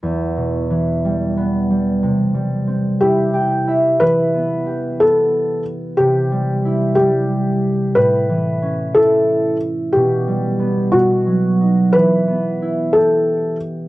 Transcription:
<<
  \new Staff \with { instrumentName = "Felt piano" } { \time 6/8 \key e \minor \tempo 4. = 60 r2. | r4. g'4. | b'4. a'4 r8 | g'4. g'4. |
b'4. a'4 r8 | g'4. fis'4. | b'4. a'4 r8 | }
  \new Staff \with { instrumentName = "Harp" } { \time 6/8 \key e \minor e,8 b,8 e8 g8 b8 g8 | c8 g8 c'8 e'8 <g' g''>8 <e' e''>8 | e8 b8 g'8 b4. | c8 g8 e'8 g4. |
a,8 e8 cis'8 e'4. | b,8 g8 b8 b,8 fis8 dis'8 | e8 b8 e'8 g'4. | }
>>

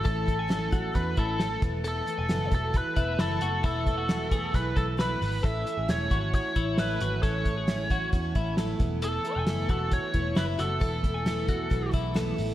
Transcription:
<<
  \new Staff \with { instrumentName = "Lead electric guitar" } { \time 4/4 \key a \major \tempo 4 = 134 a'2 b'8 a'4 r8 | a'4. a'8 b'4 a'4 | a'2 b'8 a'8 b'4 | e''4 cis''4 cis''4 b'4 |
cis''2 r2 | a'4. a'8 cis''4 b'8 a'8~ | a'2~ a'8 r4. | }
  \new Staff \with { instrumentName = "Clean electric guitar" } { \time 4/4 \key a \major a'8. gis''8. fis'4 e'8 a'4 | a'8. gis''8. fis'4 e'8 e'8 fis'8 | e'8. fis'8. gis'4 a'8 b'4 | a'8. gis'8. fis'4 e'8 e'8 fis'8 |
a'8. gis'8. fis'4 e'8 a'4 | a'8. gis''8. fis'4 e'8 e'8 fis'8 | a'8. gis''8. fis'4 e'8 a'4 | }
  \new Staff \with { instrumentName = "Twelve-string acoustic guitar" } { \time 4/4 \key a \major <a, e a cis' e'>8 <a cis' e'>8 <a, e a cis' e'>8 <a cis' e'>8 <e a cis' e'>8 <a cis' e'>8 <a, e a cis' e'>8 <e a b e'>8 | <e, b, e a b e'>8 <e a b e'>8 <e, b, e a b e'>8 <e a b e'>8 <e a b e'>8 <e a b e'>8 <e, b, e a b e'>8 <e a b e'>8 | <e, b, e a b e'>8 <e a b e'>8 <e, b, e a b e'>8 <e a b e'>8 <e a b e'>8 <e a b e'>8 <e, b, e a b e'>8 <e a b e'>8 | <a, e a cis' e'>8 <a cis' e'>8 <a, e a cis' e'>8 <a cis' e'>8 <e a cis' e'>8 <a cis' e'>8 <a, e a cis' e'>8 <a cis' e'>8 |
<a, e a cis' e'>8 <a cis' e'>8 <a, e a cis' e'>8 <a cis' e'>8 <e a cis' e'>8 <a cis' e'>8 <a, e a cis' e'>8 <e a b e'>8 | <e, b, e a b e'>8 <e a b e'>8 <e, b, e a b e'>8 <e a b e'>8 <e a b e'>8 <e a b e'>8 <e, b, e a b e'>8 <e a b e'>8 | <e, b, e a b e'>8 <e a b e'>8 <e, b, e a b e'>8 <e a b e'>8 <e a b e'>8 <e a b e'>8 <e, b, e a b e'>8 <e a b e'>8 | }
  \new Staff \with { instrumentName = "Picked electric bass" } { \clef bass \time 4/4 \key a \major a,,2 e,8 a,,4 e,,8~ | e,,8 r16 e,,16 fis,,8 e,,8. r16 e,,8 fis,,8 fis,,8 | e,,2 b,,8 b,,4 gis,,8 | a,,8 r16 a,,16 e,,8 gis,,8. r16 a,,8 a,,8 gis,,8 |
a,,2 e,8 a,,4 e,,8~ | e,,8 r16 e,,16 fis,,8 e,,8. r16 e,,8 fis,,8 fis,,8 | e,,2 b,,8 b,,4 a,,8 | }
  \new DrumStaff \with { instrumentName = "Drums" } \drummode { \time 4/4 <hh bd>8 <hh bd>8 <hh sn>8 <hh bd>8 <hh bd>8 <hh bd>8 <hh sn>8 <hh bd>8 | hh8 hh8 <hh sn>8 <hh bd>8 <hh bd>8 <hh bd>8 <hh sn>8 hh8 | <hh bd>8 <hh bd>8 <hh sn>8 <hh bd>8 <hh bd>8 <hh bd>8 <hh sn>8 hho8 | <hh bd>8 hh8 <hh sn>8 <hh bd>8 <hh bd>8 <hh bd>8 <hh sn>8 hh8 |
<hh bd>8 <hh bd>8 <hh sn>8 <hh bd>8 <hh bd>8 <hh bd>8 <hh sn>8 <hh bd>8 | hh8 hh8 <hh sn>8 <hh bd>8 <hh bd>8 <hh bd>8 <hh sn>8 hh8 | <hh bd>8 <hh bd>8 <hh sn>8 <hh bd>8 <hh bd>8 <hh bd>8 <hh sn>8 hho8 | }
>>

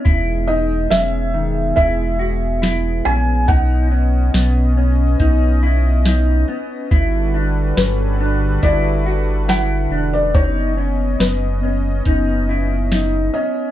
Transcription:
<<
  \new Staff \with { instrumentName = "Felt piano" } { \time 4/4 \key b \major \tempo 4 = 70 r8 dis''8 e''4 e''4 r8 gis''8 | fis''2.~ fis''8 r8 | r4 b'4 d''4 fis''8. d''16 | cis''4 b'4. r4 dis''8 | }
  \new Staff \with { instrumentName = "Clean electric guitar" } { \time 4/4 \key b \major e'8 dis'8 cis'8 dis8 e'8 fis'8 e'8 cis'8 | dis'8 cis'8 b8 cis'8 dis'8 e'8 dis'8 b8 | e'8 d'8 cis'8 d'8 e'8 fis'8 e'8 d'8 | dis'8 cis'8 b8 cis'8 dis'8 e'8 dis'8 cis'8 | }
  \new Staff \with { instrumentName = "Analog synth pad" } { \time 4/4 \key b \major <gis b gis'>1 | <cis' dis''>1 | <d g fis' a' b'>1 | <b cis' dis''>1 | }
  \new Staff \with { instrumentName = "Analog synth bass" } { \clef bass \time 4/4 \key b \major e,,4 e,,4 e,,4. ais,,8 | b,,4 b,,4 b,,4. r8 | g,,4 g,,4 g,,4. e,,8 | fis,,4 fis,,4 fis,,4. r8 | }
  \new DrumStaff \with { instrumentName = "Drums" } \drummode { \time 4/4 <hh bd>4 <hh sn>4 <hh bd>4 <hh sn>4 | <hh bd>4 <hh sn>4 <hh bd>4 <hh sn>4 | <hh bd>4 <hh sn>4 <hh bd>4 <hh sn>4 | <hh bd>4 <hh sn>4 <hh bd>4 <hh sn>4 | }
>>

